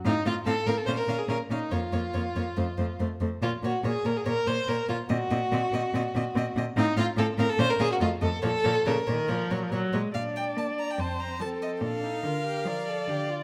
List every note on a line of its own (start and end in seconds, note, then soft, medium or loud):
0.05 0.13 A2 medium
0.05 0.14 C4 medium
0.05 0.25 D#4 medium
0.05 0.14 F5 medium
0.26 0.34 A2 medium
0.26 0.34 C4 medium
0.26 0.34 F4 medium
0.26 0.34 F5 medium
0.46 0.54 A2 medium
0.46 0.55 C4 medium
0.46 0.68 A4 medium
0.46 0.55 F5 medium
0.66 0.75 A2 medium
0.66 0.76 C4 soft
0.66 0.79 A#4 medium
0.66 0.75 F5 medium
0.77 0.85 A4 medium
0.86 0.95 A#2 medium
0.86 0.95 C#4 medium
0.86 0.90 C5 loud
0.86 0.96 F5 soft
0.97 1.20 A#4 medium
1.08 1.16 A#2 soft
1.08 1.17 C#4 soft
1.08 1.17 F5 medium
1.19 1.29 G#4 medium
1.29 1.37 A#2 soft
1.29 1.37 C#4 medium
1.29 1.37 A#4 medium
1.29 1.37 F5 soft
1.50 1.58 A#2 soft
1.50 1.59 C#4 soft
1.50 1.73 D#4 medium
1.50 1.59 F5 soft
1.71 1.80 F2 medium
1.71 1.80 A#3 soft
1.71 3.00 F4 medium
1.71 1.79 C#5 soft
1.93 2.01 F2 soft
1.93 2.01 A#3 soft
1.93 2.01 C#5 soft
2.14 2.23 F2 soft
2.14 2.23 A#3 soft
2.14 2.22 C#5 soft
2.36 2.44 F2 soft
2.36 2.44 A#3 soft
2.36 2.44 C#5 soft
2.57 2.66 F2 soft
2.57 2.65 A3 soft
2.57 2.65 C5 soft
2.78 2.87 F2 soft
2.78 2.87 A3 soft
2.78 2.86 C5 soft
3.00 3.08 F2 soft
3.00 3.09 A3 soft
3.00 3.08 C5 soft
3.20 3.29 F2 soft
3.20 3.30 A3 soft
3.20 3.28 C5 soft
3.42 3.50 A#2 medium
3.42 3.51 A#3 medium
3.42 3.51 F4 medium
3.42 3.50 C#5 medium
3.63 3.71 A#2 medium
3.63 3.72 A#3 soft
3.63 3.84 F#4 medium
3.63 3.72 C#5 soft
3.84 3.92 A#2 medium
3.84 3.92 A#3 medium
3.84 4.07 G#4 medium
3.84 3.93 C#5 soft
4.05 4.13 A#2 soft
4.05 4.13 A#3 soft
4.05 4.18 A#4 medium
4.05 4.13 C#5 soft
4.17 4.26 G#4 medium
4.26 4.34 A#2 medium
4.26 4.34 A#3 soft
4.26 4.48 A#4 medium
4.26 4.34 C#5 medium
4.47 4.55 A#2 soft
4.47 4.55 A#3 soft
4.47 4.70 C5 medium
4.47 4.55 C#5 soft
4.68 4.76 A#2 soft
4.68 4.77 A#3 medium
4.68 4.89 A#4 medium
4.68 4.77 C#5 soft
4.89 4.97 A#2 soft
4.89 4.97 A#3 medium
4.89 4.97 F4 medium
4.89 4.97 C#5 soft
5.09 5.18 A#2 medium
5.09 5.18 C4 medium
5.09 6.53 F#4 medium
5.09 5.17 D#5 medium
5.31 5.39 A#2 medium
5.31 5.39 C4 soft
5.31 5.39 D#5 medium
5.52 5.60 A#2 medium
5.52 5.60 C4 medium
5.52 5.60 D#5 soft
5.73 5.81 A#2 medium
5.73 5.81 C4 soft
5.73 5.82 D#5 medium
5.94 6.02 A#2 medium
5.94 6.02 C4 medium
5.94 6.03 D#5 medium
6.15 6.23 A#2 medium
6.15 6.23 C4 soft
6.15 6.24 D#5 medium
6.35 6.44 A#2 medium
6.35 6.43 C4 medium
6.35 6.45 D#5 medium
6.56 6.64 A#2 medium
6.56 6.64 C4 medium
6.56 6.66 D#5 medium
6.77 6.85 A2 medium
6.77 6.85 C4 medium
6.77 6.96 D#4 medium
6.77 6.86 F5 medium
6.97 7.05 A2 medium
6.97 7.06 C4 medium
6.97 7.06 F4 medium
6.97 7.05 F5 medium
7.17 7.25 A2 medium
7.17 7.26 C4 medium
7.17 7.26 A4 medium
7.17 7.26 F5 medium
7.38 7.46 A2 medium
7.38 7.47 C4 medium
7.38 7.51 A#4 medium
7.38 7.47 F5 medium
7.49 7.61 A4 medium
7.59 7.67 A#2 medium
7.59 7.67 C#4 medium
7.59 7.71 C5 loud
7.59 7.67 F5 medium
7.70 7.82 A#4 medium
7.79 7.88 A#2 medium
7.79 7.88 C#4 medium
7.79 7.91 G#4 loud
7.79 7.87 F5 medium
7.92 7.96 F#4 medium
8.00 8.09 F2 medium
8.00 8.08 A3 medium
8.00 8.09 F4 medium
8.00 8.09 D#5 medium
8.21 8.30 F2 medium
8.21 8.30 A3 medium
8.21 8.43 A4 medium
8.21 8.29 D#5 soft
8.42 8.51 A#2 medium
8.42 8.51 F3 medium
8.42 8.89 A4 loud
8.42 8.50 C#5 medium
8.64 8.73 A#2 medium
8.64 8.72 F3 medium
8.64 8.72 C#5 soft
8.86 8.95 A#2 medium
8.86 8.95 C#3 medium
8.86 9.73 A#4 medium
8.86 8.94 C#5 soft
9.07 9.16 A#2 medium
9.07 9.31 D#3 medium
9.07 9.15 C#5 soft
9.28 9.37 A#2 medium
9.28 9.53 F3 medium
9.28 9.36 C#5 soft
9.51 9.59 A#2 soft
9.51 9.64 F#3 medium
9.51 9.59 C#5 soft
9.63 9.72 F3 medium
9.72 9.81 A#2 soft
9.72 9.96 F#3 medium
9.72 9.80 C#5 soft
9.93 10.02 A#2 medium
9.93 10.16 G#3 medium
9.93 10.01 C#5 soft
10.14 10.54 A#2 soft
10.14 11.01 D4 soft
10.14 11.02 D5 soft
10.14 10.22 F5 medium
10.36 10.44 G5 soft
10.57 10.96 A#3 soft
10.57 10.66 A5 soft
10.79 10.92 A#5 soft
10.91 11.01 G5 medium
10.99 11.38 F2 soft
10.99 11.40 C4 soft
10.99 11.43 C5 soft
10.99 11.22 A5 soft
11.20 11.40 A#5 medium
11.40 11.80 F3 soft
11.40 11.83 C4 soft
11.40 12.24 A4 soft
11.40 11.49 A5 medium
11.62 11.70 D#5 soft
11.82 12.21 A#2 soft
11.82 12.06 D4 soft
11.82 13.27 F5 medium
12.04 12.27 D#4 soft
12.24 12.63 D3 soft
12.24 12.45 F4 soft
12.24 12.69 A#4 soft
12.46 12.69 G4 soft
12.66 13.05 F3 soft
12.66 12.90 A#4 soft
12.66 13.43 D5 soft
12.89 13.11 A4 soft
13.08 13.43 D3 soft
13.08 13.31 G4 soft
13.29 13.43 F4 soft